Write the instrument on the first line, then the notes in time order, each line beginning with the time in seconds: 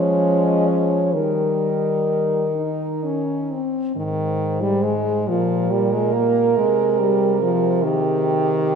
french horn
Already playing: F3 G#3 C#4 C#5
0.44 D#5
0.67 C#5
1.14 D#3 G3 D#4 A#4
2.56 D#4
3.03 C#4
3.51 C4
3.96 G#2 D#3 C5
4.61 G3
4.83 G#3
5.28 A#2 F3 G4 A#4
5.71 G3
5.93 G#3
6.13 A#3
6.57 C3 G#3 G#4
7.00 G3
7.42 F3
7.83 D#3 G4 G#4
8.53 G4